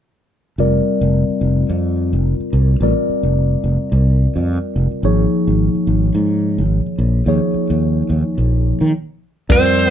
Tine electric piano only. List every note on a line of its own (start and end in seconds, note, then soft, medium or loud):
0.59 2.78 G3 medium
0.59 2.78 C4 soft
0.59 2.78 F4 medium
0.59 2.78 A#4 medium
0.59 2.78 D5 medium
2.82 5.01 G3 medium
2.82 5.01 C4 soft
2.82 5.01 F4 soft
2.82 5.02 A#4 soft
2.82 5.02 D5 medium
5.04 7.23 F3 medium
5.04 7.24 A#3 medium
5.04 7.24 D#4 medium
5.04 7.24 G#4 soft
5.04 7.24 C#5 medium
7.28 8.91 F3 medium
7.28 8.92 A#3 medium
7.28 8.92 D#4 soft
7.28 8.92 G#4 medium
7.28 8.92 C#5 medium
9.49 9.90 G3 medium
9.49 9.90 C4 medium
9.49 9.90 F4 medium
9.49 9.90 A#4 medium
9.49 9.90 D5 medium